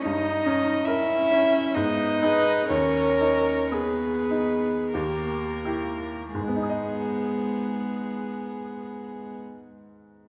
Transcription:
0.02 G2 D#4 D#5
0.46 C#4
0.85 C#4 E4 A#4 E5
1.31 C#4
1.74 G#2 B3 D#4 D#5
2.22 D#4 G#4 B4
2.69 D#2 C#4 A#4 C#5
3.20 D#4
3.72 B3 G#4 B4
4.31 D#4
4.94 D#2 A#3 G4 A#4
5.65 E4 G4
6.34 G#2 G#3 B3 G#4
6.41 G#3
6.48 B3
6.56 D#4
6.63 G#4
6.70 D#5

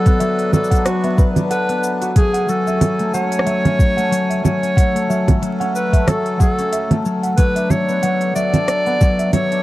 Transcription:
Already playing: F#3 B3 D4 A4 B4 E5 F#5
0.06 B3, kick, open hi-hat, cabasa
0.19 F#3 E5, open hi-hat, cabasa
0.39 open hi-hat
0.53 F#3 A4, low conga, cabasa
0.64 cabasa
0.70 D4 F#5, kick, open hi-hat, cabasa
0.75 cabasa
0.86 F#4, cross-stick, open hi-hat, cabasa
1.03 B3 E5, open hi-hat
1.18 B4, kick, cabasa
1.36 D4, open hi-hat, low conga, cabasa
1.50 A4 B4 F#5, open hi-hat, cabasa
1.69 B3 F#6, open hi-hat
1.83 F#5, cabasa
2.02 F#4 F#5, open hi-hat, cabasa
2.16 F#3 A3 C#4 G#4 G#5, kick, open hi-hat, cabasa
2.34 F#5, open hi-hat
2.48 F#3 A4, cabasa
2.67 C#4 E5, cabasa
2.81 open hi-hat, low conga, cabasa
2.99 A3, open hi-hat
3.14 F#3 C#5 F#5, cabasa
3.32 open hi-hat, cabasa
3.39 cross-stick
3.46 F#3 E5, open hi-hat, cabasa
3.64 C#4, open hi-hat, low conga
3.79 kick, cabasa
3.97 A3 F#5, open hi-hat, cabasa
4.11 F#3, open hi-hat, cabasa
4.30 E5, open hi-hat
4.44 F#3 C#5, low conga, cabasa
4.62 C#4, open hi-hat, cabasa
4.77 A4 F#5, kick, open hi-hat, cabasa
4.95 A3, open hi-hat
5.09 F#3 E5, cabasa
5.28 kick, open hi-hat, low conga, cabasa
5.42 F#3, open hi-hat, cabasa
5.60 C#4 F#5, open hi-hat
5.75 B4, cabasa
5.92 A3 E5, kick, open hi-hat, cabasa
6.07 F#3 A4, cross-stick, open hi-hat, low conga, cabasa
6.26 open hi-hat
6.39 F#3 A4 F#5, kick, cabasa
6.58 C#4, open hi-hat, cabasa
6.73 E5, open hi-hat, cabasa
6.91 A3, open hi-hat, low conga
7.05 F#3, cabasa
7.23 F#5, open hi-hat, cabasa
7.37 F#3 B3 D4 B4, kick, open hi-hat
7.56 D4 E5, open hi-hat, cabasa
7.70 C#5, low conga, cabasa
7.88 B3, cabasa
8.03 F#3 F#5, open hi-hat, cabasa
8.21 open hi-hat
8.35 F#3 D5 E5, cabasa
8.53 D4, open hi-hat, low conga, cabasa
8.68 cross-stick, open hi-hat, cabasa
8.86 B3 F#5, open hi-hat
9.00 F#3, kick, cabasa
9.19 E5, open hi-hat, cabasa
9.33 F#3 C#5, open hi-hat, low conga, cabasa
9.52 D4, open hi-hat

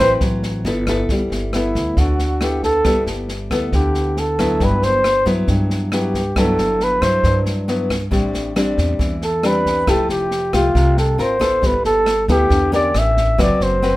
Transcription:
Already playing: F#3
0.00 A1 C4 E4 B4 C5
0.20 A1 F#3, kick, snare
0.43 snare
0.65 G1 B3 E4 A4, snare
0.87 B3 E4 A4, kick, cross-stick, snare
1.09 G1 G3, kick, snare
1.30 G1, snare
1.53 B3 E4 A4, cross-stick, snare
1.75 D2, kick, snare
1.97 D2 D3 F#4, kick, snare
2.19 snare
2.41 B3 E4 G4 A4, cross-stick, snare
2.63 A4, kick, snare
2.85 G1 G3 B3 E4 A4, kick, cross-stick, snare
3.06 G1, snare
3.29 snare
3.51 D2 B3 E4 A4, kick, cross-stick, snare
3.72 D2 D3 G4, kick, snare
3.94 snare
4.17 A4, snare
4.39 F#3 B3 E4, kick, cross-stick, snare
4.60 G1 G2 B4, kick, snare
4.82 G1 C5, snare
5.04 cross-stick, snare
5.26 G2 F#3 B3 E4, kick, snare
5.47 G2, kick, snare
5.70 snare
5.92 F#3 B3 E4 G4, cross-stick, snare
6.14 kick, snare
6.36 G1 G2 F#3 B3 E4 A4, kick, cross-stick, snare
6.58 G1, snare
6.80 B4, snare
7.02 G2 F#3 E4 C5, kick, cross-stick, snare
7.24 G2, kick, snare
7.46 snare
7.68 F#3 B3 E4, snare
7.90 kick, cross-stick, snare
8.11 A1 A2 G3 C4 D4, kick, snare
8.34 A1, snare
8.56 G3 C4 D4, cross-stick, snare
8.78 E2, kick, snare
8.99 E2 E3, kick, snare
9.22 A4, snare
9.43 G3 C4 D4 B4, cross-stick, snare
9.65 kick, snare
9.87 F1 F3 A3 E4 G4 A4, kick, cross-stick, snare
10.09 F1 G4, snare
10.31 snare
10.53 C2 A3 F4 G4, kick, cross-stick, snare
10.75 C2 C3, kick, snare
10.97 A4, snare
11.18 G#1 C4 F4 A#4 C5, snare
11.39 B3 E4 A4, kick, cross-stick, snare
11.62 G1 G3, kick, snare
11.67 B4
11.84 G1 A4, snare
12.06 cross-stick, snare
12.28 D2 B3 E4 G4 A4, kick, snare
12.49 E2 D3, kick, snare
12.72 C#4 G4 A#4 D5, snare
12.94 A1 E5, cross-stick, snare
13.17 kick, snare
13.38 F#1 F#3 C4 F#4 B4 D5, kick, cross-stick, snare
13.60 F#1 C5, snare
13.82 C4 F#4 B4, snare

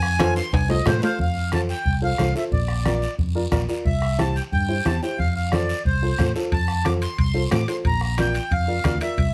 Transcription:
Already playing: F2 G#5
0.03 bombo rim
0.19 F4 A4 C5, bombo rim, cowbell, high conga, high timbale, short guiro
0.36 C6, high timbale, short guiro
0.53 C2 G#5, bombo low, cowbell, high conga, high timbale, long guiro
0.69 F4 A4 C5 D#5, low timbale
0.85 A2 F4 A4 C5, bombo rim, cowbell, high conga, low conga, low timbale, short guiro
0.98 F4 A4 B4, short guiro
1.03 C5 F5, low timbale
1.19 F2 F5, bombo low, high conga, long guiro
1.52 F4 A4 C5 A5, bombo rim, high conga, short guiro
1.69 G5, short guiro
1.85 C2, bombo low, high conga, long guiro
2.02 F4 A4 C5 F5
2.18 C2 F4 A4 C5, bombo rim, high conga, short guiro
2.35 F4 A4 C5 E5, short guiro
2.51 A#1 D5, bombo low, high conga, long guiro
2.68 bombo rim
2.85 F4 A#4 D5, bombo rim, high conga, short guiro
3.02 short guiro
3.18 F2, bombo low, high conga, long guiro
3.35 F4 A#4 D5
3.51 A#1 F4 A#4 D5, bombo low, bombo rim, high conga, short guiro
3.68 F4 A#4 D5, short guiro
3.85 C2 E5, bombo low, high conga, long guiro
4.02 bombo rim
4.18 E4 G4 C5 A5, bombo rim, high conga, short guiro
4.36 G5, short guiro
4.52 G2 G5, bombo low, high conga, long guiro
4.68 E4 G4 C5
4.85 E2 E4 G4 C5 A5, bombo rim, high conga, short guiro
5.02 E4 G4 C5 G5, short guiro
5.19 F2 F5, bombo low, high conga, long guiro
5.35 F5
5.52 F4 A4 C5 D5, bombo rim, high conga, short guiro
5.69 short guiro
5.85 C2 C5, bombo low, high conga, long guiro
6.02 F4 A4 C5
6.18 A2 F4 A4 C5, bombo low, bombo rim, high conga, short guiro
6.35 F4 A4 C5, short guiro
6.52 F2 A5, bombo low, high conga, high timbale, long guiro
6.68 bombo rim
6.85 F4 A4 C5 D6, bombo rim, high conga, high timbale, short guiro
7.02 C6, high timbale, short guiro
7.18 C2 C6, bombo low, high conga, high timbale, long guiro
7.34 F4 A4 C5
7.51 A2 F4 A4 C5 D6, bombo rim, high conga, high timbale, low timbale, short guiro
7.68 F4 A4 C5 C6, high timbale, short guiro
7.85 A#1 A#5, bombo low, high conga, high timbale, long guiro
8.01 A#5, bombo rim
8.17 F4 A#4 D5 G5, bombo rim, high conga, high timbale, short guiro
8.35 high timbale, short guiro
8.51 F2 F5, bombo low, high conga, high timbale, long guiro
8.67 F4 A#4 D5
8.84 D2 F4 A#4 D5, bombo low, bombo rim, high conga, high timbale, low timbale, short guiro
9.01 F4 A#4 D5 E5, high timbale, short guiro
9.17 C2, bombo low, high conga, high timbale, long guiro

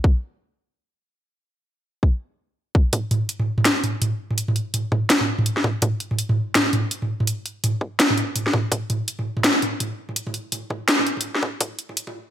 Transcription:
0.04 kick
2.03 kick
2.75 kick
2.93 kick, closed hi-hat, mid tom
3.11 closed hi-hat, mid tom
3.29 closed hi-hat
3.40 mid tom
3.58 mid tom
3.65 snare, closed hi-hat
3.84 closed hi-hat, mid tom
4.02 closed hi-hat, mid tom
4.31 mid tom
4.38 closed hi-hat
4.48 mid tom
4.56 closed hi-hat
4.74 closed hi-hat, mid tom
4.92 kick, mid tom
5.10 snare, closed hi-hat
5.21 mid tom
5.39 mid tom
5.46 closed hi-hat
5.57 snare
5.64 kick, mid tom
5.82 kick, closed hi-hat, mid tom
6.00 closed hi-hat
6.11 mid tom
6.19 closed hi-hat
6.29 mid tom
6.55 snare, closed hi-hat, mid tom
6.73 closed hi-hat, mid tom
6.91 closed hi-hat
7.02 mid tom
7.20 mid tom
7.27 closed hi-hat
7.46 closed hi-hat
7.64 closed hi-hat, mid tom
7.81 kick
8.00 snare, closed hi-hat
8.10 mid tom
8.18 closed hi-hat
8.36 closed hi-hat, mid tom
8.47 snare
8.53 kick, mid tom
8.72 kick, closed hi-hat, mid tom
8.90 closed hi-hat, mid tom
9.08 closed hi-hat
9.19 mid tom
9.37 mid tom
9.44 snare, closed hi-hat
9.62 closed hi-hat, mid tom
9.80 closed hi-hat, mid tom
10.09 mid tom
10.16 closed hi-hat
10.27 mid tom
10.34 closed hi-hat
10.52 closed hi-hat, mid tom
10.70 kick, mid tom
10.88 snare, closed hi-hat
10.99 mid tom
11.07 closed hi-hat
11.17 closed hi-hat, mid tom
11.35 snare
11.42 kick, mid tom
11.61 kick, closed hi-hat, mid tom
11.79 closed hi-hat
11.89 mid tom
11.97 closed hi-hat
12.07 mid tom

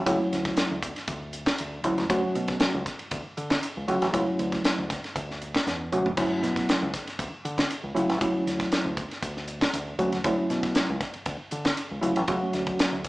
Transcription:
0.06 C#2 F#3 A3 C#4 E4, kick, hi-hat pedal, ride
0.20 muted fingered electric bass stroke
0.33 D2, snare, hi-hat pedal, ride
0.45 kick, snare, ride
0.57 snare, hi-hat pedal, ride
0.71 D2
0.83 kick, hi-hat pedal, ride
0.96 snare, ride
1.07 D2, kick, hi-hat pedal, ride
1.33 hi-hat pedal, ride
1.46 kick, snare, ride
1.58 D2, hi-hat pedal, ride
1.84 D2 F#3 A3 C#4 E4, kick, hi-hat pedal, ride
1.98 D2, snare, ride
2.09 D2 F#3 A3 C#4 F#4, kick, hi-hat pedal, ride
2.35 B2, hi-hat pedal, ride
2.48 kick, snare, ride
2.60 snare, hi-hat pedal, ride
2.74 C#2
2.86 kick, snare, hi-hat pedal, ride
2.99 muted fingered electric bass stroke, ride
3.11 D2, kick, hi-hat pedal, ride
3.25 muted fingered electric bass stroke
3.37 D3, hi-hat pedal, ride
3.50 kick, snare, ride
3.63 hi-hat pedal, ride
3.77 C#2
3.88 C#2 F#3 A3 C#4 F#4, hi-hat pedal, ride
4.02 A1, snare, ride
4.13 C#2 F#3 A3 C#4 E4, kick, hi-hat pedal, ride
4.28 muted fingered electric bass stroke
4.39 D2, hi-hat pedal, ride
4.52 kick, snare, ride
4.64 snare, hi-hat pedal, ride
4.79 D2
4.90 kick, snare, hi-hat pedal, ride
5.04 snare, ride
5.16 D2, kick, hi-hat pedal, ride
5.31 snare
5.41 hi-hat pedal, ride
5.54 kick, snare, ride
5.66 E2, snare, hi-hat pedal
5.92 D2 F#3 A3 C#4 F#4, hi-hat pedal, mid tom
6.06 floor tom
6.17 D2 F#3 A3 C#4 E4, kick, hi-hat pedal, crash, ride
6.43 B2, snare, hi-hat pedal, ride
6.56 kick, snare, ride
6.69 snare, hi-hat pedal, ride
6.82 C#2
6.94 kick, snare, hi-hat pedal, ride
7.07 muted fingered electric bass stroke, snare, ride
7.19 D2, kick, hi-hat pedal, ride
7.32 muted fingered electric bass stroke
7.45 D3, hi-hat pedal, ride
7.58 kick, snare, ride
7.70 hi-hat pedal, ride
7.83 C#2
7.95 C#2 F#3 A3 C#4 E4, hi-hat pedal, ride
8.09 A1, snare, ride
8.21 C#2 F#3 A3 C#4 E4, kick, hi-hat pedal, ride
8.34 muted fingered electric bass stroke
8.47 D2, snare, hi-hat pedal, ride
8.60 kick, snare, ride
8.72 snare, hi-hat pedal, ride
8.85 D2
8.97 kick, hi-hat pedal, ride
9.11 snare, ride
9.22 D2, kick, hi-hat pedal, ride
9.37 snare
9.48 hi-hat pedal, ride
9.61 kick, snare, ride
9.73 D2, hi-hat pedal, ride
9.99 D2 F#3 A3 C#4 F#4, kick, hi-hat pedal, ride
10.12 D2, snare, ride
10.24 D2 F#3 A3 C#4 E4, kick, hi-hat pedal, ride
10.50 B2, snare, hi-hat pedal, ride
10.63 kick, snare, ride
10.75 snare, hi-hat pedal, ride
10.90 C#2
11.01 kick, snare, hi-hat pedal, ride
11.14 muted fingered electric bass stroke, ride
11.26 D2, kick, hi-hat pedal, ride
11.40 muted fingered electric bass stroke
11.51 D3, hi-hat pedal, ride
11.65 kick, snare, ride
11.77 hi-hat pedal, ride
11.91 C#2
12.01 C#2 F#3 A3 C#4 E4, hi-hat pedal, ride
12.16 A1, ride
12.28 C#2 F#3 A3 C#4 F#4, kick, hi-hat pedal, ride
12.42 muted fingered electric bass stroke
12.53 D2, snare, hi-hat pedal, ride
12.67 kick, ride
12.79 snare, hi-hat pedal, ride
12.92 D2
13.04 kick, snare, hi-hat pedal, ride

